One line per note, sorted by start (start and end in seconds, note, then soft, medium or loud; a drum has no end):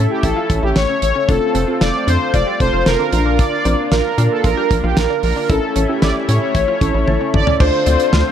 0.00 3.09 A3 medium
0.00 0.20 C#4 medium
0.00 0.78 C#4 medium
0.00 1.27 C#4 medium
0.00 0.78 E4 medium
0.00 1.26 E4 medium
0.00 0.11 A4 loud
0.00 0.78 A4 medium
0.10 0.24 G4 medium
0.23 0.34 A1 loud
0.23 0.35 E4 medium
0.23 0.64 A4 medium
0.23 kick medium
0.23 closed hi-hat medium
0.36 0.60 F4 medium
0.50 0.60 A1 loud
0.50 kick medium
0.50 closed hi-hat medium
0.63 0.73 A1 loud
0.63 0.86 E4 medium
0.63 0.76 G4 medium
0.76 0.86 A1 loud
0.76 1.00 C#5 loud
0.76 snare loud
0.76 closed hi-hat medium
0.89 1.12 C#4 medium
1.02 1.13 A1 loud
1.02 1.29 C#5 loud
1.02 closed hi-hat medium
1.15 1.27 C#4 medium
1.28 1.39 F1 loud
1.28 1.59 C4 medium
1.28 3.11 C4 medium
1.28 1.52 D4 medium
1.28 1.59 F4 medium
1.28 5.46 F4 medium
1.28 1.59 A4 medium
1.28 1.83 A4 loud
1.28 kick loud
1.28 closed hi-hat medium
1.55 1.65 F1 loud
1.55 1.78 C4 medium
1.55 closed hi-hat medium
1.68 2.39 C4 medium
1.68 2.39 F4 medium
1.68 2.39 A4 medium
1.81 1.91 F1 loud
1.81 2.04 F4 medium
1.81 2.08 D5 loud
1.81 snare loud
1.81 closed hi-hat medium
2.07 2.18 F2 loud
2.07 2.31 D4 medium
2.07 2.35 C5 loud
2.07 closed hi-hat medium
2.34 2.44 F1 loud
2.34 2.45 F4 medium
2.34 2.58 D5 loud
2.34 kick medium
2.34 closed hi-hat medium
2.47 2.70 G4 medium
2.60 2.70 F1 medium
2.60 3.13 C4 medium
2.60 3.12 F4 medium
2.60 3.13 A4 medium
2.60 2.87 C5 loud
2.60 kick medium
2.60 closed hi-hat medium
2.73 2.84 F1 loud
2.73 2.96 F4 medium
2.86 2.97 F1 loud
2.86 3.12 A#4 loud
2.86 snare loud
2.86 closed hi-hat medium
2.99 3.23 D4 medium
3.12 3.43 A#1 loud
3.12 5.47 A#3 medium
3.12 3.55 D4 medium
3.12 5.47 D4 medium
3.12 3.55 F4 medium
3.12 3.55 A#4 medium
3.12 3.40 A#4 medium
3.12 closed hi-hat medium
3.26 3.37 D4 medium
3.39 3.62 D4 medium
3.39 3.93 D5 loud
3.39 kick loud
3.39 closed hi-hat medium
3.65 3.76 A#1 loud
3.65 3.89 C4 medium
3.65 4.06 D4 medium
3.65 4.06 F4 medium
3.65 4.06 A#4 medium
3.65 closed hi-hat medium
3.92 4.02 A#1 loud
3.92 4.15 F4 medium
3.92 4.32 A#4 loud
3.92 snare loud
3.92 closed hi-hat medium
4.18 4.28 A#2 loud
4.18 4.41 D4 medium
4.18 4.99 D4 medium
4.18 4.99 F4 medium
4.18 4.99 A#4 medium
4.18 closed hi-hat medium
4.31 4.45 A4 medium
4.44 4.54 A#1 loud
4.44 4.56 F4 medium
4.44 4.85 A#4 loud
4.44 kick medium
4.44 closed hi-hat medium
4.57 4.81 G4 medium
4.71 4.81 A#1 loud
4.71 kick medium
4.71 closed hi-hat medium
4.84 4.94 A#1 medium
4.84 5.07 F4 medium
4.84 4.97 G4 medium
4.97 5.07 A#1 loud
4.97 5.22 A#4 medium
4.97 snare loud
4.97 closed hi-hat medium
5.10 5.33 D4 medium
5.23 5.33 A#1 loud
5.23 5.50 A#4 medium
5.23 open hi-hat medium
5.36 5.48 D4 medium
5.49 5.60 A1 loud
5.49 7.58 A3 medium
5.49 7.58 C#4 medium
5.49 5.80 C#4 medium
5.49 5.73 E4 medium
5.49 7.58 E4 medium
5.49 5.80 E4 medium
5.49 5.80 A4 medium
5.49 6.04 A4 loud
5.49 kick loud
5.49 closed hi-hat medium
5.76 5.86 A1 medium
5.76 5.99 C#4 medium
5.76 closed hi-hat medium
5.89 6.60 C#4 medium
5.89 6.60 E4 medium
5.89 6.60 G4 medium
6.02 6.13 A1 loud
6.02 6.25 E4 medium
6.02 6.14 D5 loud
6.02 snare loud
6.02 closed hi-hat medium
6.29 6.39 A2 loud
6.29 6.52 C#4 medium
6.29 7.30 C#5 loud
6.29 closed hi-hat medium
6.55 6.65 A1 loud
6.55 6.66 E4 medium
6.55 kick medium
6.55 closed hi-hat medium
6.68 6.91 F4 medium
6.81 6.92 A1 loud
6.81 7.42 C#4 medium
6.81 7.42 E4 medium
6.81 7.42 A4 medium
6.81 kick medium
6.81 closed hi-hat medium
6.94 7.05 A1 loud
6.94 7.18 E4 medium
7.08 7.18 A1 loud
7.08 7.57 A5 medium
7.08 high tom medium
7.21 7.44 C#4 medium
7.34 7.44 A1 loud
7.34 7.61 D5 loud
7.34 mid tom medium
7.47 7.59 C#4 medium
7.47 floor tom medium
7.60 7.70 D2 loud
7.60 8.32 D3 medium
7.60 8.32 A3 medium
7.60 8.32 C4 medium
7.60 7.83 D4 loud
7.60 8.21 D4 medium
7.60 8.32 F4 medium
7.60 8.21 F4 medium
7.60 8.21 A4 medium
7.60 7.79 C5 loud
7.60 8.21 C5 medium
7.60 8.32 C5 loud
7.60 kick loud
7.60 crash loud
7.86 7.97 D2 loud
7.86 8.10 C4 medium
7.86 8.06 D5 medium
7.86 closed hi-hat medium
8.00 closed hi-hat medium
8.13 8.23 D2 loud
8.13 8.32 F4 medium
8.13 snare loud